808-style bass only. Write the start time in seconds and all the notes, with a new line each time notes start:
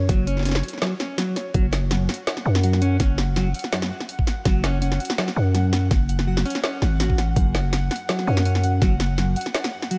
0.09 F#1
1.54 F#1
2.46 F#2
3.00 F#1
4.45 F#1
5.36 F#2
5.91 F#1
6.82 G#1
7.00 A1
7.36 F#1
8.27 F#2
8.82 F#1